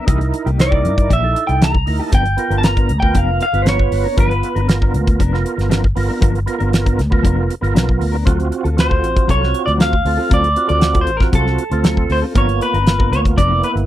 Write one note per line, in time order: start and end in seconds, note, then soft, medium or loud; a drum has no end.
0.06 0.31 C2 medium
0.06 0.20 E3 medium
0.06 0.20 A#3 medium
0.06 0.50 D#4 medium
0.06 0.19 D#4 medium
0.06 0.51 E4 medium
0.06 0.19 G4 medium
0.06 0.51 A#4 loud
0.06 kick loud
0.06 closed hi-hat medium
0.20 muted clean electric guitar stroke medium
0.20 closed hi-hat soft
0.33 muted clean electric guitar stroke soft
0.33 closed hi-hat medium
0.46 0.86 C2 medium
0.46 0.59 A#3 soft
0.46 0.59 D#4 soft
0.46 0.59 G4 medium
0.46 closed hi-hat soft
0.58 1.12 D#4 medium
0.58 1.13 E4 medium
0.58 1.13 A#4 medium
0.58 1.12 D5 medium
0.58 muted clean electric guitar stroke soft
0.58 snare loud
0.58 closed hi-hat medium
0.71 0.88 A#3 soft
0.71 0.87 D#4 soft
0.71 0.86 G4 medium
0.71 kick medium
0.84 1.08 G2 medium
0.84 closed hi-hat medium
0.96 muted clean electric guitar stroke soft
0.96 kick medium
0.96 closed hi-hat soft
1.09 1.33 A#1 loud
1.09 1.25 E3 medium
1.09 1.25 A#3 medium
1.09 1.26 D#4 medium
1.09 1.26 G4 medium
1.09 kick medium
1.09 closed hi-hat medium
1.13 1.43 E5 medium
1.23 1.77 D#4 medium
1.23 1.77 E4 medium
1.23 1.78 A4 medium
1.36 muted clean electric guitar stroke soft
1.36 closed hi-hat medium
1.47 1.83 C2 medium
1.47 1.63 G5 medium
1.47 muted clean electric guitar stroke soft
1.47 closed hi-hat soft
1.61 1.74 E3 medium
1.61 1.74 A#3 medium
1.61 1.74 D#4 medium
1.61 1.73 G4 medium
1.61 2.02 A#5 medium
1.61 snare loud
1.61 closed hi-hat medium
1.74 muted clean electric guitar stroke soft
1.74 kick medium
1.86 1.99 D2 medium
1.86 2.12 D#4 medium
1.86 2.12 E4 medium
1.86 2.13 A#4 medium
1.86 muted clean electric guitar stroke soft
1.86 open hi-hat medium
1.99 2.11 A#3 soft
1.99 2.13 D#4 soft
1.99 2.12 G4 medium
1.99 2.14 A5 medium
2.11 2.36 G1 medium
2.11 2.25 F3 medium
2.11 2.25 B3 medium
2.11 2.25 D4 medium
2.11 2.24 A#4 medium
2.11 2.58 G5 medium
2.11 kick loud
2.11 closed hi-hat medium
2.25 muted clean electric guitar stroke soft
2.25 closed hi-hat soft
2.37 2.92 B3 medium
2.37 2.92 F4 medium
2.37 2.93 A#4 medium
2.37 muted clean electric guitar stroke soft
2.37 closed hi-hat medium
2.50 2.91 G1 medium
2.50 2.63 B3 soft
2.50 2.63 D4 soft
2.50 2.63 A#4 medium
2.50 closed hi-hat soft
2.58 2.64 A5 medium
2.63 2.99 A#5 medium
2.63 muted clean electric guitar stroke soft
2.63 snare loud
2.63 closed hi-hat medium
2.76 2.93 B3 soft
2.76 2.92 D4 soft
2.76 2.91 A#4 soft
2.76 kick medium
2.76 closed hi-hat soft
2.89 3.12 D2 loud
2.89 closed hi-hat medium
3.00 3.45 B3 medium
3.00 3.45 F4 medium
3.00 3.46 A#4 medium
3.00 3.18 G5 medium
3.00 muted clean electric guitar stroke soft
3.00 kick medium
3.14 3.38 F1 medium
3.14 3.30 F3 medium
3.14 3.30 B3 medium
3.14 3.30 D4 medium
3.14 3.30 A#4 medium
3.14 3.41 F5 medium
3.14 kick medium
3.14 closed hi-hat medium
3.41 3.61 F5 medium
3.41 muted clean electric guitar stroke soft
3.41 closed hi-hat medium
3.53 3.88 G1 medium
3.53 4.08 B3 medium
3.53 4.08 F4 medium
3.53 4.08 B4 medium
3.53 muted clean electric guitar stroke soft
3.53 closed hi-hat soft
3.62 3.78 F3 medium
3.62 3.79 B3 medium
3.62 3.67 C5 medium
3.62 closed hi-hat medium
3.67 3.78 D4 medium
3.67 3.78 A#4 medium
3.67 4.15 C#5 medium
3.67 snare loud
3.79 muted clean electric guitar stroke soft
3.79 kick medium
3.91 4.03 G1 medium
3.91 muted clean electric guitar stroke soft
3.91 open hi-hat medium
4.04 4.17 B3 soft
4.04 4.17 D4 soft
4.04 4.17 A#4 soft
4.17 4.40 G1 loud
4.17 4.30 F3 medium
4.17 4.60 B3 medium
4.17 4.31 B3 medium
4.17 4.30 D4 medium
4.17 4.61 F4 medium
4.17 4.30 A#4 medium
4.17 4.61 B4 medium
4.17 4.66 B4 medium
4.17 kick loud
4.17 closed hi-hat medium
4.31 muted clean electric guitar stroke soft
4.31 closed hi-hat soft
4.43 muted clean electric guitar stroke soft
4.43 closed hi-hat medium
4.55 4.95 G1 medium
4.55 4.68 B3 medium
4.55 4.68 D4 medium
4.55 4.68 A#4 medium
4.55 closed hi-hat soft
4.68 5.22 B3 medium
4.68 5.22 F4 medium
4.68 5.23 A#4 medium
4.68 muted clean electric guitar stroke soft
4.68 snare loud
4.68 closed hi-hat medium
4.81 4.97 B3 soft
4.81 4.97 D4 medium
4.81 4.96 A#4 medium
4.81 kick medium
4.94 5.17 D2 medium
4.94 closed hi-hat medium
5.07 muted clean electric guitar stroke soft
5.07 kick medium
5.07 closed hi-hat soft
5.19 5.43 F1 loud
5.19 5.35 F3 medium
5.19 5.35 B3 medium
5.19 5.35 D4 medium
5.19 5.36 A#4 loud
5.19 kick medium
5.19 closed hi-hat medium
5.32 5.86 B3 medium
5.32 5.87 F4 medium
5.32 5.87 A#4 medium
5.32 snare soft
5.44 muted clean electric guitar stroke soft
5.44 closed hi-hat medium
5.57 5.93 G1 medium
5.57 muted clean electric guitar stroke soft
5.57 snare soft
5.57 closed hi-hat soft
5.69 5.83 F3 medium
5.69 5.83 B3 medium
5.69 5.83 D4 medium
5.69 5.82 A#4 medium
5.69 snare loud
5.69 closed hi-hat medium
5.83 muted clean electric guitar stroke soft
5.83 kick medium
5.95 6.08 G1 medium
5.95 6.39 B3 medium
5.95 6.40 F4 medium
5.95 6.40 A#4 medium
5.95 muted clean electric guitar stroke soft
5.95 open hi-hat medium
6.09 6.20 B3 soft
6.09 6.21 D4 medium
6.09 6.21 A#4 medium
6.21 6.45 G1 medium
6.21 6.34 F3 medium
6.21 6.34 B3 medium
6.21 6.33 D4 medium
6.21 6.33 A#4 medium
6.21 kick loud
6.21 closed hi-hat medium
6.34 muted clean electric guitar stroke soft
6.34 closed hi-hat soft
6.46 7.01 B3 medium
6.46 7.01 F4 medium
6.46 7.01 A#4 loud
6.46 muted clean electric guitar stroke soft
6.46 closed hi-hat medium
6.59 7.00 G1 medium
6.59 6.71 B3 medium
6.59 6.71 D4 medium
6.59 6.72 A#4 medium
6.59 closed hi-hat soft
6.72 muted clean electric guitar stroke soft
6.72 snare loud
6.72 closed hi-hat medium
6.84 7.01 B3 soft
6.84 7.01 D4 medium
6.84 7.00 A#4 medium
6.84 kick medium
6.84 closed hi-hat soft
6.99 7.22 D2 medium
6.99 snare soft
6.99 closed hi-hat medium
7.10 7.54 B3 medium
7.10 7.55 F4 medium
7.10 7.55 A#4 loud
7.10 muted clean electric guitar stroke soft
7.10 kick medium
7.23 7.48 F1 loud
7.23 7.39 F3 medium
7.23 7.39 B3 medium
7.23 7.40 D4 medium
7.23 7.40 A#4 medium
7.23 kick medium
7.23 closed hi-hat medium
7.49 muted clean electric guitar stroke soft
7.49 closed hi-hat medium
7.61 7.74 G1 medium
7.61 8.16 B3 medium
7.61 8.17 F4 medium
7.61 8.17 A#4 loud
7.61 muted clean electric guitar stroke soft
7.61 closed hi-hat soft
7.74 7.98 B1 medium
7.74 7.88 F3 medium
7.74 7.87 B3 medium
7.74 7.87 D4 medium
7.74 7.86 A#4 medium
7.74 snare loud
7.74 closed hi-hat medium
7.87 muted clean electric guitar stroke medium
7.87 kick medium
8.00 8.24 D2 medium
8.00 muted clean electric guitar stroke soft
8.00 open hi-hat medium
8.12 8.25 B3 soft
8.12 8.26 D4 soft
8.12 8.25 A#4 medium
8.25 8.50 D2 medium
8.25 8.39 F#3 medium
8.25 8.69 C4 medium
8.25 8.39 C4 medium
8.25 8.70 F4 medium
8.25 8.38 F4 medium
8.25 8.70 F#4 loud
8.25 8.37 A4 medium
8.25 kick loud
8.25 closed hi-hat medium
8.38 muted clean electric guitar stroke medium
8.38 closed hi-hat soft
8.51 muted clean electric guitar stroke soft
8.51 closed hi-hat medium
8.64 9.03 D2 medium
8.64 8.76 C4 soft
8.64 8.76 F4 medium
8.64 8.77 A4 medium
8.64 closed hi-hat soft
8.77 9.31 C4 medium
8.77 9.32 F4 medium
8.77 9.32 F#4 medium
8.77 9.30 C5 medium
8.77 muted clean electric guitar stroke soft
8.77 snare loud
8.77 closed hi-hat medium
8.89 9.06 C4 soft
8.89 9.06 F4 soft
8.89 9.05 A4 soft
8.89 kick medium
9.03 9.26 A1 medium
9.03 closed hi-hat medium
9.16 muted clean electric guitar stroke soft
9.16 kick medium
9.16 closed hi-hat soft
9.27 9.52 C2 medium
9.27 9.44 F#3 medium
9.27 9.44 C4 medium
9.27 9.44 F4 medium
9.27 9.44 A4 medium
9.27 9.61 C#5 loud
9.27 kick medium
9.27 closed hi-hat medium
9.41 9.95 C4 medium
9.41 9.96 F4 medium
9.41 9.96 F#4 medium
9.41 snare soft
9.53 muted clean electric guitar stroke soft
9.53 closed hi-hat medium
9.66 10.02 D2 medium
9.66 9.71 D5 medium
9.66 muted clean electric guitar stroke soft
9.66 closed hi-hat soft
9.78 9.92 F#3 medium
9.78 9.92 C4 medium
9.78 9.91 F4 medium
9.78 9.90 A4 medium
9.78 10.33 F5 medium
9.78 snare loud
9.78 closed hi-hat medium
9.91 muted clean electric guitar stroke soft
9.91 kick medium
10.05 10.17 D2 medium
10.05 10.49 C4 medium
10.05 10.49 F4 medium
10.05 10.49 A4 medium
10.05 muted clean electric guitar stroke soft
10.05 open hi-hat medium
10.17 10.29 C4 soft
10.17 10.30 F4 soft
10.17 10.30 A4 medium
10.30 10.54 D2 loud
10.30 10.43 F#3 medium
10.30 10.43 C4 medium
10.30 10.42 F4 medium
10.30 10.42 A4 medium
10.30 kick loud
10.30 closed hi-hat medium
10.34 10.67 D5 loud
10.43 muted clean electric guitar stroke soft
10.43 closed hi-hat soft
10.55 11.10 C4 medium
10.55 11.11 F4 medium
10.55 11.11 F#4 medium
10.55 muted clean electric guitar stroke soft
10.55 closed hi-hat medium
10.68 11.08 D2 loud
10.68 10.80 C4 soft
10.68 10.80 F4 medium
10.68 10.81 A4 medium
10.68 10.99 D5 loud
10.68 closed hi-hat soft
10.81 muted clean electric guitar stroke soft
10.81 snare loud
10.81 closed hi-hat medium
10.94 11.11 C4 soft
10.94 11.10 F4 soft
10.94 11.09 A4 soft
10.94 kick medium
10.94 closed hi-hat soft
11.01 11.16 C5 medium
11.07 11.31 A1 loud
11.07 closed hi-hat medium
11.17 11.64 C4 medium
11.17 11.22 A#4 medium
11.17 muted clean electric guitar stroke soft
11.17 kick medium
11.17 snare soft
11.21 11.64 F4 medium
11.21 11.64 F#4 medium
11.32 11.56 C2 loud
11.32 11.48 F#3 medium
11.32 11.49 C4 medium
11.32 11.49 F4 medium
11.32 11.49 A4 medium
11.32 12.13 A4 medium
11.32 kick medium
11.32 closed hi-hat medium
11.47 snare soft
11.58 muted clean electric guitar stroke soft
11.58 closed hi-hat medium
11.70 12.06 D2 medium
11.70 12.26 C4 medium
11.70 12.26 F4 medium
11.70 12.26 A4 medium
11.70 muted clean electric guitar stroke soft
11.70 closed hi-hat soft
11.83 11.97 F#3 medium
11.83 11.97 C4 medium
11.83 11.96 F4 medium
11.83 11.96 A4 medium
11.83 snare loud
11.83 closed hi-hat medium
11.97 muted clean electric guitar stroke soft
11.97 kick medium
12.10 12.21 D2 medium
12.10 12.19 C5 medium
12.10 muted clean electric guitar stroke soft
12.10 open hi-hat medium
12.22 12.35 C4 soft
12.22 12.35 F4 soft
12.22 12.35 A4 medium
12.34 12.59 G1 medium
12.34 12.48 F3 medium
12.34 12.78 A#3 medium
12.34 12.48 B3 medium
12.34 12.79 B3 medium
12.34 12.49 D4 medium
12.34 12.79 F4 medium
12.34 12.48 A#4 medium
12.34 12.62 C#5 medium
12.34 kick loud
12.34 closed hi-hat medium
12.49 muted clean electric guitar stroke soft
12.49 closed hi-hat soft
12.61 13.09 B4 loud
12.61 muted clean electric guitar stroke soft
12.61 closed hi-hat medium
12.74 13.13 G1 medium
12.74 12.86 B3 soft
12.74 12.86 D4 soft
12.74 12.86 A#4 medium
12.74 closed hi-hat soft
12.86 13.41 A#3 medium
12.86 13.41 B3 medium
12.86 13.41 F4 medium
12.86 muted clean electric guitar stroke soft
12.86 snare loud
12.86 closed hi-hat medium
12.99 13.16 B3 soft
12.99 13.15 D4 soft
12.99 13.14 A#4 medium
12.99 kick medium
13.11 13.35 D2 loud
13.11 13.19 C#5 medium
13.11 closed hi-hat medium
13.25 muted clean electric guitar stroke soft
13.25 kick medium
13.25 closed hi-hat soft
13.37 13.61 F1 loud
13.37 13.53 F3 medium
13.37 13.53 B3 medium
13.37 13.53 D4 medium
13.37 13.54 A#4 medium
13.37 13.61 D5 medium
13.37 kick medium
13.37 closed hi-hat medium
13.49 13.86 A#3 medium
13.49 13.86 B3 medium
13.49 13.86 E4 medium
13.63 13.71 B4 medium
13.63 muted clean electric guitar stroke soft
13.63 closed hi-hat medium
13.75 13.86 G1 medium
13.75 muted clean electric guitar stroke soft
13.75 closed hi-hat soft